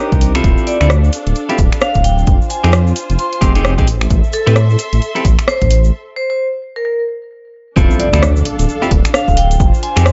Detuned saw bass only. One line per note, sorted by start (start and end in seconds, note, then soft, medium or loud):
0.12 0.42 C2 medium
0.44 0.56 D1 loud
0.81 1.10 D2 medium
1.27 1.34 D1 medium
1.59 1.70 D1 loud
1.95 2.25 D1 loud
2.27 2.39 F1 loud
2.64 2.93 F2 medium
3.10 3.17 F1 loud
3.42 3.80 F1 loud
3.78 4.08 A1 loud
4.10 4.22 A1 loud
4.47 4.77 A2 medium
4.93 5.00 A1 loud
5.25 5.36 A1 loud
5.62 5.91 A1 loud
7.77 7.88 D1 loud
8.13 8.43 D2 medium
8.59 8.67 D1 loud
8.91 9.03 D1 loud
9.28 9.57 D1 loud
9.60 9.71 F1 loud
9.97 10.12 F2 medium